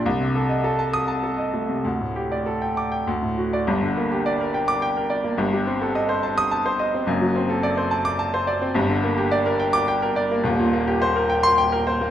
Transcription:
\new Staff \with { instrumentName = "Grand piano" } { \time 3/4 \key g \minor \tempo 4 = 106 << { r4. ees'''8 r4 | r4. d'''8 r8. d''16 | r4. r16 d'''8 r8. | r4. r16 ees'''8 r8. |
r4. r16 d'''8 r8. | r4. r16 d'''8 r8. | \key c \dorian r4. r16 c'''8 r8. | } \\ { c,16 c16 a'16 ees''16 a'16 a''8 a''16 a'16 ees''16 a16 c16 | d,16 a,16 g'16 d''16 a'16 g''8 g''16 d,16 a,16 fis'8 | <g,, g,>16 d16 bes16 g'16 d''16 bes'16 g''8 g''16 bes'16 d''16 bes16 | <g,, g,>16 g16 c'16 a'16 ees''16 c''16 a''8 a''16 c''16 ees''16 c'16 |
<fis,, fis,>16 fis16 c'16 a'16 d''16 c''16 a''8 a''16 c''16 d''16 c'16 | <g,, g,>16 d16 bes16 g'16 d''16 bes'16 g''8 g''16 bes'16 d''16 bes16 | <ees,, ees,>16 bes,16 bes16 g'16 c''16 bes'16 g''8 g''16 bes'16 c''16 bes16 | } >> }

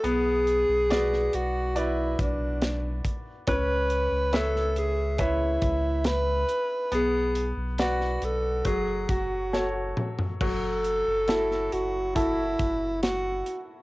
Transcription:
<<
  \new Staff \with { instrumentName = "Grand piano" } { \time 4/4 \key fis \minor \tempo 4 = 69 b4 <fis' b' d''>4 <fis' b' d''>4 r4 | cis'4 <b' cis'' e''>4 <b' cis'' e''>4 r4 | b4 <b' d'' fis''>4 fis4 <fis' a' cis''>4 | fis4 <e' fis' a'>4 <e' fis' a'>4 r4 | }
  \new Staff \with { instrumentName = "Alto saxophone" } { \time 4/4 \key fis \minor gis'4. fis'8 e'8 d'4 r8 | b'4 a'8 gis'8 e'4 b'4 | gis'8 r8 fis'8 a'8 gis'8 fis'4 r8 | a'4. fis'8 e'4 fis'8. r16 | }
  \new Staff \with { instrumentName = "Sub bass" } { \clef bass \time 4/4 \key fis \minor b,,8. b,,8. b,,4 b,,4 r8 | cis,8. cis,4.~ cis,16 cis,4 r8 | b,,8. b,,8. b,,8 fis,,8 fis,,4 r8 | fis,,8. fis,,8. fis,,4 fis,,4 r8 | }
  \new DrumStaff \with { instrumentName = "Drums" } \drummode { \time 4/4 hh8 hh8 <hh sn>16 sn16 hh8 hh8 <hh bd>8 <hh sn>8 <hh bd>8 | <hh bd>8 hh8 <hh sn>16 sn16 hh8 <hh bd>8 <hh bd>8 <hh sn>8 hh8 | hh8 hh8 <hh sn>16 sn16 hh8 <hh bd>8 <hh bd>8 sn8 toml16 tomfh16 | <cymc bd>8 hh8 <hh sn>16 sn16 hh8 <hh bd>8 <hh bd>8 <hh sn>8 hh8 | }
>>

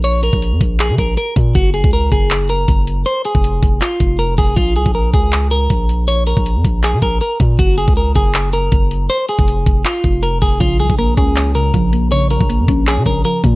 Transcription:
<<
  \new Staff \with { instrumentName = "Clean electric guitar" } { \time 4/4 \key bes \minor \tempo 4 = 159 des''8 bes'4. aes'8 bes'8 bes'8 r8 | ges'8 aes'8 bes'8 aes'4 bes'4. | c''8 aes'4. f'4 bes'8 aes'8 | f'8 aes'8 bes'8 aes'4 bes'4. |
des''8 bes'4. aes'8 bes'8 bes'8 r8 | ges'8 aes'8 bes'8 aes'4 bes'4. | c''8 aes'4. f'4 bes'8 aes'8 | f'8 aes'8 bes'8 aes'4 bes'4. |
des''8 bes'4. aes'8 bes'8 bes'8 r8 | }
  \new Staff \with { instrumentName = "Synth pluck" } { \clef bass \time 4/4 \key bes \minor r1 | r1 | r1 | r1 |
r1 | r1 | r1 | des8 f8 bes8 des'8 des''8 des8 f8 bes8 |
des8 f8 bes8 des'8 des''8 des8 f8 bes8 | }
  \new Staff \with { instrumentName = "808-style bass" } { \clef bass \time 4/4 \key bes \minor bes,,8. bes,,8 f,16 bes,,8. des16 bes,,8 r8 bes,8 | ges,,8. des,8. ges,,4. ges,,4 | r8. f,,8. f,,8 r8 f,,4 f,,8 | bes,,8 c,16 bes,,8. des,4. bes,,4~ |
bes,,8. bes,,8 f,16 bes,,8. des16 bes,,8 r8 bes,8 | ges,,8. des,8. ges,,4. ges,,4 | r8. f,,8. f,,8 r8 f,,4 f,,8 | bes,,8 c,16 bes,,8. des,4. bes,,4~ |
bes,,8. bes,,8 f,16 bes,,8. des16 bes,,8 r8 bes,8 | }
  \new DrumStaff \with { instrumentName = "Drums" } \drummode { \time 4/4 hh8 hh16 bd16 hh8 <hh bd>8 <hc hh>8 <hh bd>8 hh8 <hh bd>8 | <hh bd>8 hh16 bd16 r8 <hh bd>8 <hc hh>8 hh8 <hh bd>8 hh8 | hh8 hh16 bd16 hh8 <hh bd>8 <hc hh>8 <hh bd>8 hh8 <hho bd>8 | <hh bd>8 hh16 bd16 r8 <hh bd>8 <hc hh>8 hh8 <hh bd>8 hh8 |
hh8 hh16 bd16 hh8 <hh bd>8 <hc hh>8 <hh bd>8 hh8 <hh bd>8 | <hh bd>8 hh16 bd16 r8 <hh bd>8 <hc hh>8 hh8 <hh bd>8 hh8 | hh8 hh16 bd16 hh8 <hh bd>8 <hc hh>8 <hh bd>8 hh8 <hho bd>8 | <hh bd>8 hh16 bd16 r8 <hh bd>8 <hc hh>8 hh8 <hh bd>8 hh8 |
hh8 hh16 bd16 hh8 <hh bd>8 <hc hh>8 <hh bd>8 hh8 <hh bd>8 | }
>>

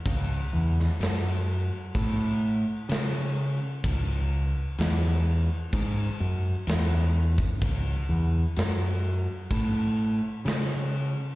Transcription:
<<
  \new Staff \with { instrumentName = "Fingered electric bass" } { \clef bass \time 4/4 \key cis \minor \tempo 4 = 64 cis,8 e,8 fis,4 a,4 cis4 | cis,4 e,4 gis,8 fis,8 e,4 | cis,8 e,8 fis,4 a,4 cis4 | }
  \new DrumStaff \with { instrumentName = "Drums" } \drummode { \time 4/4 <cymc bd>8. sn16 <cymc sn>4 <cymc bd>4 <cymc sn>4 | <cymc bd>4 <cymc sn>4 <cymc bd>4 <cymc sn>8. bd16 | <cymc bd>4 <cymc sn>4 <cymc bd>4 <cymc sn>4 | }
>>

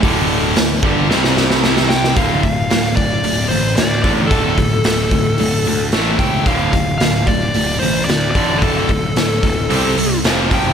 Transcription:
<<
  \new Staff \with { instrumentName = "Lead electric guitar" } { \time 4/4 \key d \minor \tempo 4 = 111 r2. r8 g''8 | f''8 f''4 d''4 c''8 d''8 d''8 | a'2. r8 g''8 | f''8 f''8 f''8 d''4 c''8 d''8 d''8 |
a'2. r8 g''8 | }
  \new Staff \with { instrumentName = "Distorted electric guitar" } { \clef bass \time 4/4 \key d \minor <d, a, d>4 <d, a,>8 <g, d g>8 <c g c'>2 | <d, a, d>8 <d, a,>8 <d, a,>8 <d, a,>8 <d, a,>8 <d, a,>8 <d, a,>8 <d, a, d>8 | <d, a, d>8 <d, a,>8 <d, a,>8 <d, a,>8 <d, a,>8 <d, a,>8 <a, e a>8 <a, e a>8 | <d, a, d>8 <d, a,>8 <d, a,>8 <d, a,>8 <d, a,>8 <d, a,>8 <d, a,>8 <d, a, d>8 |
<d, a, d>8 <d, a,>8 <d, a,>8 <d, a,>8 <c g c'>8 <c g>8 <f, c f>8 <f, c f>8 | }
  \new Staff \with { instrumentName = "Overdriven electric guitar" } { \clef bass \time 4/4 \key d \minor <d, a, d>4 <d, a,>8 <g, d g>8 <c g c'>2 | <d, a, d>8 <d, a,>8 <d, a,>8 <d, a,>8 <d, a,>8 <d, a,>8 <d, a,>8 <d, a, d>8 | <d, a, d>8 <d, a,>8 <d, a,>8 <d, a,>8 <d, a,>8 <d, a,>8 <a, e a>8 <a, e a>8 | <d, a, d>8 <d, a,>8 <d, a,>8 <d, a,>8 <d, a,>8 <d, a,>8 <d, a,>8 <d, a, d>8 |
<d, a, d>8 <d, a,>8 <d, a,>8 <d, a,>8 <c g c'>8 <c g>8 <f, c f>8 <f, c f>8 | }
  \new Staff \with { instrumentName = "Picked electric bass" } { \clef bass \time 4/4 \key d \minor d,,4 d,,8 g,,8 c,2 | d,,8 d,,8 d,,4 d,,8 a,,8 d,8 a,,8 | d,,8 d,,8 d,,8 d,,8 d,,8 d,8 a,,8 cis,8 | d,,8 d,,8 d,,4 d,,8 a,,8 d,8 a,,8 |
d,,8 d,,8 d,,8 d,,8 c,8 c,8 f,,8 f,,8 | }
  \new DrumStaff \with { instrumentName = "Drums" } \drummode { \time 4/4 <hho bd>4 <hho sn>8 bd8 sn16 sn16 sn16 sn16 sn16 sn16 sn16 sn16 | <hho bd>8 <hho bd>8 <hho sn>8 <hho bd>8 hho8 hho8 <hho sn>8 <hho bd>8 | <hho bd>8 <hho bd>8 <hho sn>8 <hho bd>8 hho8 hho8 <hho sn>8 <hho bd>8 | <hho bd>8 <hho bd>8 <hho sn>8 <hho bd>8 hho8 hho8 <hho sn>8 <hho bd>8 |
<hho bd>8 <hho bd>8 <hho sn>8 <hho bd>8 hho8 hho8 <hho sn>8 <hho bd>8 | }
>>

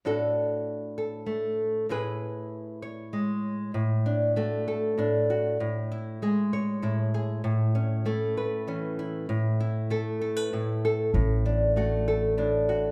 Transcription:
<<
  \new Staff \with { instrumentName = "Nylon-string guitar" } { \time 3/4 \key d \lydian \tempo 4 = 97 << { <d' fis' a'>4. a'4. | <e' gis' b'>4. cis''4. | r8 d'8 fis'8 a'8 d'8 fis'8 | r8 e'8 gis'8 cis''8 e'8 gis'8 |
r8 cis'8 e'8 b'8 cis'8 e'8~ | e'8 e'8 a'8 a'16 b'16 e'8 a'8~ | a'8 d'8 fis'8 a'8 d'8 fis'8 | } \\ { a,2 a4 | a,2 gis4 | a,4 a4 a,4 | a,4 gis4 a,4 |
a,4 a4 e4 | a,4 a4 a,4 | a,4 a4 a,4 | } >> }
  \new Staff \with { instrumentName = "Upright bass" } { \clef bass \time 3/4 \key d \lydian r2. | r2. | r2. | r2. |
r2. | r2. | a,,2. | }
>>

